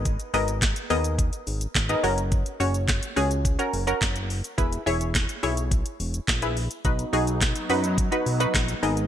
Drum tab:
HH |xxoxxxoxxxoxxxox|xxoxxxoxxxoxxxox|xxoxxxoxxxoxxxox|xxoxxxoxxxoxxxox|
SH |xxxxxxxxxxxxxxxx|xxxxxxxxxxxxxxxx|xxxxxxxxxxxxxxxx|xxxxxxxxxxxxxxxx|
CP |----x-------x---|----x-------x---|----x-------x---|----x-------x---|
SD |----o-------o---|----o-------o---|----o-------o---|----o-------o---|
BD |o---o---o---o---|o---o---o---o---|o---o---o---o---|o---o---o---o---|